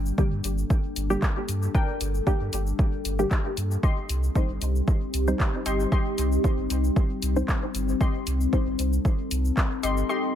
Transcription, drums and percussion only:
0.06 shaker soft
0.18 kick loud
0.18 shaker soft
0.44 closed hi-hat medium
0.44 shaker medium
0.58 shaker soft
0.70 kick loud
0.70 shaker soft
0.96 closed hi-hat medium
0.96 shaker medium
1.10 shaker soft
1.22 kick loud
1.22 clap medium
1.22 shaker soft
1.49 closed hi-hat medium
1.49 shaker medium
1.62 shaker soft
1.75 kick loud
1.75 shaker soft
2.01 closed hi-hat medium
2.01 shaker medium
2.15 shaker soft
2.27 kick loud
2.27 shaker soft
2.53 closed hi-hat medium
2.53 shaker medium
2.67 shaker soft
2.79 kick loud
2.79 shaker soft
3.05 closed hi-hat medium
3.05 shaker medium
3.19 shaker soft
3.31 kick loud
3.31 clap medium
3.31 shaker soft
3.57 closed hi-hat medium
3.57 shaker medium
3.71 shaker soft
3.83 kick loud
3.83 shaker soft
4.09 closed hi-hat medium
4.09 shaker medium
4.23 shaker soft
4.35 kick loud
4.35 shaker soft
4.62 closed hi-hat medium
4.62 shaker medium
4.75 shaker soft
4.88 kick loud
4.88 shaker soft
5.14 closed hi-hat medium
5.14 shaker medium
5.28 shaker soft
5.40 kick loud
5.40 clap medium
5.40 shaker soft
5.66 closed hi-hat medium
5.66 shaker medium
5.80 shaker soft
5.92 kick loud
5.92 shaker soft
6.18 closed hi-hat medium
6.18 shaker medium
6.32 shaker soft
6.44 kick loud
6.44 shaker soft
6.70 closed hi-hat medium
6.70 shaker medium
6.84 shaker soft
6.96 kick loud
6.96 shaker soft
7.22 closed hi-hat medium
7.22 shaker medium
7.36 shaker soft
7.49 kick loud
7.49 clap medium
7.49 shaker soft
7.75 closed hi-hat medium
7.75 shaker medium
7.89 shaker soft
8.01 kick loud
8.01 shaker soft
8.27 closed hi-hat medium
8.27 shaker medium
8.41 shaker soft
8.53 kick loud
8.53 shaker soft
8.79 closed hi-hat medium
8.79 shaker medium
8.93 shaker soft
9.05 kick loud
9.05 shaker soft
9.31 closed hi-hat medium
9.31 shaker medium
9.45 shaker soft
9.57 kick loud
9.57 clap medium
9.57 shaker soft
9.83 closed hi-hat medium
9.83 shaker medium
9.97 shaker soft
10.09 shaker soft

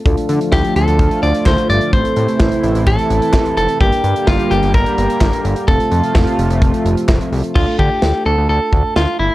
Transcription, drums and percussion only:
0.06 kick loud
0.06 closed hi-hat medium
0.17 closed hi-hat medium
0.29 closed hi-hat medium
0.41 closed hi-hat medium
0.52 kick loud
0.52 snare loud
0.64 closed hi-hat medium
0.76 closed hi-hat medium
0.88 closed hi-hat medium
0.99 kick loud
0.99 closed hi-hat medium
1.11 closed hi-hat soft
1.23 closed hi-hat medium
1.34 closed hi-hat medium
1.46 kick loud
1.46 snare loud
1.46 clap loud
1.58 closed hi-hat medium
1.70 closed hi-hat medium
1.81 closed hi-hat medium
1.93 kick loud
1.93 closed hi-hat medium
2.05 closed hi-hat medium
2.16 closed hi-hat medium
2.28 closed hi-hat medium
2.40 kick loud
2.40 snare loud
2.52 closed hi-hat medium
2.63 closed hi-hat medium
2.75 closed hi-hat medium
2.87 kick loud
2.87 closed hi-hat medium
2.98 closed hi-hat soft
3.10 closed hi-hat medium
3.22 closed hi-hat medium
3.33 kick loud
3.33 snare loud
3.33 clap loud
3.45 closed hi-hat medium
3.57 closed hi-hat medium
3.69 closed hi-hat medium
3.81 kick loud
3.81 closed hi-hat medium
3.92 closed hi-hat medium
4.04 closed hi-hat medium
4.16 closed hi-hat medium
4.27 kick loud
4.27 snare loud
4.39 closed hi-hat medium
4.51 closed hi-hat medium
4.63 closed hi-hat medium
4.74 kick loud
4.74 closed hi-hat medium
4.86 closed hi-hat soft
4.98 closed hi-hat medium
5.10 closed hi-hat medium
5.21 kick loud
5.21 snare loud
5.21 clap loud
5.33 closed hi-hat medium
5.45 closed hi-hat medium
5.56 closed hi-hat medium
5.68 kick loud
5.68 closed hi-hat medium
5.80 closed hi-hat medium
5.92 closed hi-hat medium
6.03 closed hi-hat medium
6.15 kick loud
6.15 snare loud
6.27 closed hi-hat medium
6.39 closed hi-hat medium
6.50 closed hi-hat medium
6.62 kick loud
6.62 closed hi-hat medium
6.74 closed hi-hat soft
6.86 closed hi-hat medium
6.97 closed hi-hat medium
7.09 kick loud
7.09 snare loud
7.09 clap loud
7.21 closed hi-hat medium
7.33 open hi-hat medium
7.44 closed hi-hat medium
7.56 kick loud
7.56 crash medium
7.79 kick medium
8.02 snare loud
8.73 kick medium
8.96 snare loud

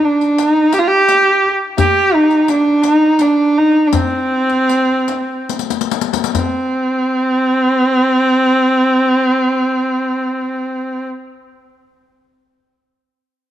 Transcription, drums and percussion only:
0.21 riq soft
0.21 tombak ka soft
0.38 riq soft
0.38 tombak tek medium
0.56 tombak ka soft
0.73 riq soft
0.73 tombak tek medium
1.08 riq soft
1.08 tombak tek medium
1.43 tombak ka soft
1.78 riq medium
1.78 tombak dum medium
2.30 riq soft
2.30 tombak ka soft
2.48 riq soft
2.48 tombak tek medium
2.67 tombak ka soft
2.83 riq soft
2.83 tombak tek medium
3.19 riq soft
3.19 tombak tek medium
3.58 tombak ka soft
3.93 riq medium
3.93 tombak dum medium
4.49 riq soft
4.49 tombak ka soft
4.69 riq soft
4.90 tombak ka soft
5.08 riq soft
5.08 tombak tek medium
5.49 riq soft
5.49 tombak tek soft
5.59 riq medium
5.70 riq medium
5.70 tombak ka medium
5.81 riq medium
5.91 riq medium
5.91 tombak tek medium
6.01 riq medium
6.13 riq medium
6.13 tombak ka medium
6.24 riq medium
6.35 riq medium
6.35 tombak dum medium

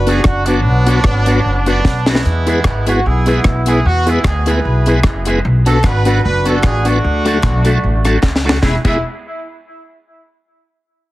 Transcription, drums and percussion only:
0.07 closed hi-hat medium
0.24 kick loud
0.24 cross-stick loud
0.46 closed hi-hat loud
0.86 closed hi-hat medium
1.04 kick loud
1.04 cross-stick loud
1.26 closed hi-hat medium
1.66 closed hi-hat medium
1.85 kick loud
1.85 snare medium
2.06 snare medium
2.15 snare medium
2.25 hi-hat pedal medium
2.47 closed hi-hat medium
2.64 kick loud
2.64 cross-stick loud
2.64 clap medium
2.87 closed hi-hat medium
3.26 closed hi-hat medium
3.44 kick medium
3.44 cross-stick loud
3.44 clap medium
3.66 closed hi-hat loud
4.07 closed hi-hat medium
4.24 kick loud
4.24 cross-stick loud
4.24 clap loud
4.46 closed hi-hat medium
4.86 closed hi-hat medium
5.03 kick loud
5.03 cross-stick loud
5.03 clap medium
5.25 closed hi-hat loud
5.66 closed hi-hat medium
5.84 kick loud
5.84 cross-stick loud
5.84 clap loud
6.05 closed hi-hat medium
6.46 closed hi-hat medium
6.63 kick loud
6.63 cross-stick loud
6.63 clap medium
6.85 closed hi-hat medium
7.26 closed hi-hat medium
7.43 kick loud
7.43 cross-stick loud
7.43 clap loud
7.65 closed hi-hat medium
8.05 cross-stick medium
8.05 closed hi-hat medium
8.23 kick loud
8.23 snare medium
8.23 clap medium
8.36 snare medium
8.49 snare loud
8.62 kick loud
8.62 snare medium
8.62 clap medium
8.85 kick loud
8.85 clap medium
8.85 crash medium

